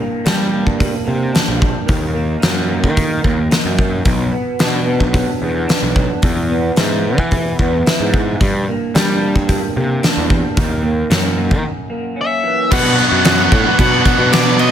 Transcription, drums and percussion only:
0.26 snare, open hi-hat
0.67 kick
0.80 kick, open hi-hat
1.35 snare, open hi-hat
1.62 kick
1.88 kick, open hi-hat
2.42 snare, open hi-hat
2.84 kick
2.97 kick, open hi-hat
3.24 kick
3.51 snare, open hi-hat
3.79 kick
4.05 kick, open hi-hat
4.59 snare, open hi-hat
5.00 kick
5.14 kick, open hi-hat
5.69 snare, open hi-hat
5.96 kick
6.22 kick, open hi-hat
6.76 snare, open hi-hat
7.18 kick
7.31 kick, open hi-hat
7.59 kick
7.86 snare, open hi-hat
8.14 kick
8.41 kick, open hi-hat
8.95 snare, open hi-hat
9.36 kick
9.49 kick, open hi-hat
10.03 snare, open hi-hat
10.30 kick
10.57 kick, open hi-hat
11.11 snare, open hi-hat
11.51 kick
12.71 kick, crash
12.99 crash
13.25 snare, crash
13.52 kick, crash
13.79 kick, crash
14.05 kick, crash
14.33 snare, crash
14.59 crash

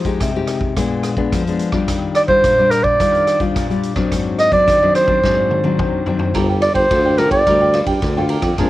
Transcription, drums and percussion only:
0.05 kick, closed hi-hat
0.20 kick, cross-stick, closed hi-hat
0.47 cross-stick, closed hi-hat
0.61 kick
0.77 kick, cross-stick, closed hi-hat
1.03 cross-stick, closed hi-hat
1.17 kick
1.32 kick, cross-stick, closed hi-hat
1.47 closed hi-hat
1.59 closed hi-hat
1.72 kick, cross-stick
1.88 kick, cross-stick, closed hi-hat
2.15 cross-stick, closed hi-hat
2.28 kick
2.44 kick, cross-stick, closed hi-hat
2.71 cross-stick, closed hi-hat
2.84 kick
3.00 kick, cross-stick, closed hi-hat
3.15 closed hi-hat
3.27 cross-stick, closed hi-hat
3.40 kick, closed hi-hat
3.56 kick, cross-stick, closed hi-hat
3.71 closed hi-hat
3.83 closed hi-hat
3.96 kick, cross-stick
4.12 kick, cross-stick, closed hi-hat
4.39 cross-stick, closed hi-hat
4.52 kick, closed hi-hat
4.68 kick, cross-stick, closed hi-hat
4.95 cross-stick, closed hi-hat
5.08 kick
5.23 kick, snare
5.51 high tom
5.64 high tom
5.79 kick, mid tom
6.06 floor tom
6.19 floor tom
6.35 kick, cross-stick, ride
6.62 cross-stick, ride
6.75 kick, ride
6.91 kick, cross-stick, ride
7.18 cross-stick, ride
7.31 kick, ride
7.47 kick, cross-stick, ride
7.73 cross-stick, ride
7.86 kick, ride
8.02 kick, cross-stick, ride
8.29 ride
8.42 kick, cross-stick, ride
8.58 kick, cross-stick, ride

